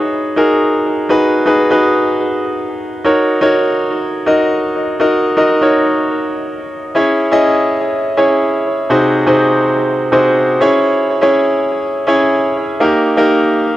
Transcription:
Already playing: D#4 F#4 G#4 B4 C#5
0.36 D#4 F#4 G#4 A#4
1.09 D#4 F#4 G#4 B4
1.46 D#4 F#4 G#4 B4
1.71 D#4 F#4 G#4 B4
3.04 D#4 F#4 A#4 C#5
3.41 D#4 F#4 A#4 C#5
4.26 D#4 F#4 A#4 D#5
5.00 D#4 F#4 A#4 D#5
5.37 D#4 F#4 A#4 D#5
5.61 D#4 F#4 A#4 C#5
6.95 C#4 E4 G#4 C#5
7.32 C#4 E4 G#4 D#5
8.17 C#4 E4 G#4 C#5
8.90 C3 D#4 F#4 G#4 C5
9.26 C3 D#4 F#4 G#4 C5
10.12 C3 D#4 F#4 G#4 C5
10.61 C#4 E4 G#4 C#5
11.21 C#4 E4 G#4 C#5
12.07 C#4 E4 G#4 C#5
12.80 A#3 D#4 G4 A#4
13.17 A#3 D#4 G4 A#4

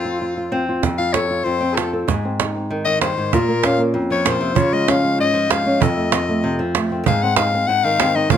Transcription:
Already playing: F2 C4 F4 A4
0.05 F4
0.22 F4
0.37 F4
0.52 C4
0.69 F4
0.83 F2, cajon bass, cajon slap
0.98 F4 F5
1.13 A4 C#5, cajon slap
1.31 F4
1.44 F2 C5
1.61 C4, cajon slap
1.73 G#4 A4
1.77 F4, cajon slap
1.93 A4
2.08 G#2 G#4, cajon bass, cajon slap
2.25 C4
2.39 D#4, cajon slap
2.55 C4
2.71 D#3
2.85 D#3 D#5, cajon slap
3.01 G2 C5, cajon slap
3.18 G#2
3.33 A#2 F4 A#4, cajon bass, cajon slap
3.49 A#3
3.63 C#4 F5, cajon slap
3.80 A#3
3.94 F2
4.10 F3 C#5
4.25 A#2 C5, cajon slap
4.41 C3
4.55 C#3 F4 C#5, cajon bass
4.72 G#3 D#5
4.88 C#4 F5, cajon slap
5.04 G#3
5.18 G#2 D#5
5.34 F3, cajon slap
5.50 G#3 F5, cajon slap
5.66 C#4
5.80 F2 A4 D#5, cajon bass
5.96 A3
6.12 C4, cajon slap
6.29 A3
6.44 C3
6.59 F3
6.75 A3, cajon slap
6.91 C4, cajon slap
7.06 G#2 G#4 F5, cajon bass
7.23 C4 F#5
7.36 D#4 F5, cajon slap
7.54 C4
7.67 G#2 F#5
7.83 D#3 F5, cajon slap
8.00 C4, cajon slap
8.15 D#4 D#5, cajon slap
8.30 A#2 F3 A#3 C#4 F4 F5, cajon bass

